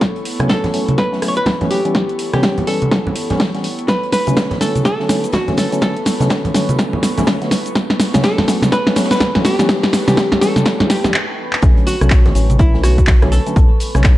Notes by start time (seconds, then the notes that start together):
Already playing: B3 E4 A4 C#5 B5 C#6
0.01 G1 F#5, kick, snare, closed hi-hat
0.16 closed hi-hat
0.25 closed hi-hat, open hi-hat
0.40 G1 F#3 A3 B3 C#4, cross-stick, closed hi-hat, high conga
0.49 A4, kick, snare, closed hi-hat
0.64 snare, closed hi-hat, low conga
0.74 D1 F#3 A3 B3 C#4, closed hi-hat, open hi-hat
0.88 closed hi-hat, high conga
0.98 B4, kick, snare, closed hi-hat
1.12 G1 F#3 A3 B3 C#4, snare
1.22 F#3 A3 B3 C#4, cross-stick, closed hi-hat, open hi-hat
1.28 C#5
1.37 B4, closed hi-hat
1.46 G1, kick, snare, closed hi-hat, low conga
1.61 F#3 A3 B3 C#4, snare, closed hi-hat, low conga
1.70 G4, snare, closed hi-hat, open hi-hat
1.85 E3 G3 B3 C#4, closed hi-hat
1.95 A1 C#5 G5, kick, snare, closed hi-hat
2.09 closed hi-hat
2.19 closed hi-hat, open hi-hat
2.33 A1 E3 G3 B3 C#4 G4, cross-stick, snare, closed hi-hat, high conga
2.43 kick, snare, closed hi-hat
2.58 closed hi-hat, low conga
2.67 G1 E3 G3 B3 C#4 A4, closed hi-hat, open hi-hat
2.82 closed hi-hat, high conga
2.91 E3 G3 B3 C#4, kick, snare, closed hi-hat
3.06 A1, low conga
3.15 closed hi-hat, open hi-hat
3.30 E3 G3 B3 C#4, snare, closed hi-hat, low conga
3.40 A1, kick, snare, closed hi-hat
3.54 E3 G3 B3 C#4, snare, closed hi-hat
3.64 closed hi-hat, open hi-hat
3.79 closed hi-hat
3.88 B1 B4 A5 C#6, kick, snare, closed hi-hat, shaker
4.03 closed hi-hat
4.12 B4, snare, closed hi-hat, open hi-hat, shaker
4.27 B1 D3 F#3 A3 C#4, closed hi-hat, high conga, shaker
4.37 kick, snare, closed hi-hat, shaker
4.51 snare, closed hi-hat, low conga
4.61 A1 D3 F#3 A3 C#4 A4, snare, closed hi-hat, open hi-hat, shaker
4.75 closed hi-hat, high conga, shaker
4.85 A4, kick, snare, closed hi-hat, shaker
5.00 B1 D3 F#3 A3 C#4, snare
5.09 D3 F#3 A3 C#4, snare, closed hi-hat, open hi-hat, shaker
5.24 closed hi-hat, shaker
5.32 B1 F#4, kick, snare, closed hi-hat, low conga, shaker
5.48 D3 F#3 A3 C#4, snare, closed hi-hat, low conga
5.57 A4, snare, closed hi-hat, open hi-hat, shaker
5.72 D3 F#3 A3 C#4, closed hi-hat, shaker
5.82 B1 A4 B5, kick, snare, closed hi-hat, shaker
5.96 closed hi-hat
6.05 snare, closed hi-hat, open hi-hat, shaker
6.20 B1 D3 F#3 A3 C#4, snare, closed hi-hat, high conga, shaker
6.30 kick, snare, closed hi-hat, shaker
6.45 closed hi-hat, low conga
6.54 A1 D3 F#3 A3 C#4, snare, closed hi-hat, open hi-hat, shaker
6.69 closed hi-hat, high conga, shaker
6.79 D3 F#3 A3 C#4, kick, snare, closed hi-hat, shaker
6.93 B1, low conga
7.03 snare, closed hi-hat, open hi-hat, shaker
7.17 D3 F#3 A3 C#4, snare, closed hi-hat, low conga, shaker
7.27 B1, kick, snare, closed hi-hat, shaker
7.42 D3 F#3 A3 B3, snare, closed hi-hat
7.51 snare, closed hi-hat, open hi-hat, shaker
7.66 closed hi-hat, shaker
7.75 G1 B3 B4 F#5 A5, kick, snare, closed hi-hat, shaker
7.90 snare, closed hi-hat
8.00 snare, closed hi-hat, open hi-hat, shaker
8.14 G1 F#3 A3 B3 C#4, snare, closed hi-hat, high conga, shaker
8.23 A4, kick, snare, closed hi-hat, shaker
8.38 snare, closed hi-hat, low conga
8.48 D1 F#3 A3 B3 C#4, snare, closed hi-hat, open hi-hat, shaker
8.62 snare, closed hi-hat, high conga, shaker
8.72 B4, kick, snare, closed hi-hat, shaker
8.87 G1 F#3 A3 B3 C#4, snare
8.96 F#3 A3 B3 C#4, snare, closed hi-hat, open hi-hat, shaker
9.04 snare, closed hi-hat
9.11 B4, snare, closed hi-hat, shaker
9.15 snare, closed hi-hat
9.21 kick, snare, closed hi-hat, low conga, shaker
9.35 F#3 A3 B3 C#4, snare, closed hi-hat, low conga
9.44 G4, snare, closed hi-hat, open hi-hat, shaker
9.59 E3 G3 B3 C#4, snare, closed hi-hat, shaker
9.69 A1 G5, kick, snare, closed hi-hat, shaker
9.83 snare, closed hi-hat
9.93 snare, closed hi-hat, open hi-hat, shaker
10.08 A1 E3 G3 B3 C#4 G4, snare, closed hi-hat, high conga, shaker
10.17 kick, snare, closed hi-hat, shaker
10.32 snare, closed hi-hat, low conga
10.41 G1 E3 G3 B3 C#4 A4, snare, closed hi-hat, open hi-hat, shaker
10.56 snare, closed hi-hat, high conga, shaker
10.65 E3 G3 B3 C#4, kick, snare, closed hi-hat, shaker
10.80 A1, snare, closed hi-hat, low conga
10.90 G4, snare, closed hi-hat, open hi-hat, shaker
11.04 E3 G3 B3 C#4, kick, snare, closed hi-hat, low conga, shaker
11.14 clap
11.53 clap
11.62 B1 D3 F#3 A3 C#4 B4 A5 C#6, kick, closed hi-hat, shaker
11.77 closed hi-hat
11.87 F#4, closed hi-hat, open hi-hat, shaker
12.01 B1 D3 F#3 A3 C#4, cross-stick, closed hi-hat, high conga, shaker
12.10 kick, snare, clap, closed hi-hat, shaker
12.26 snare, closed hi-hat, low conga
12.35 A1 D3 F#3 A3 C#4, closed hi-hat, open hi-hat, shaker
12.50 closed hi-hat, high conga, shaker
12.59 E4, kick, closed hi-hat, shaker
12.74 B1 D3 F#3 A3 C#4, snare
12.83 D3 F#3 A3 C#4 F#4, cross-stick, closed hi-hat, open hi-hat, shaker
12.98 kick, closed hi-hat, shaker
13.07 B1, kick, snare, clap, closed hi-hat, low conga, shaker
13.22 D3 F#3 A3 C#4, cross-stick, snare, closed hi-hat, low conga
13.32 A4, snare, closed hi-hat, open hi-hat, shaker
13.46 D3 F#3 A3 C#4, closed hi-hat, shaker
13.56 B1, kick, closed hi-hat, shaker
13.80 closed hi-hat, open hi-hat, shaker
13.95 B1 D3 F#3 A3 C#4, cross-stick, snare, closed hi-hat, high conga, shaker
14.04 kick, snare, clap, closed hi-hat, shaker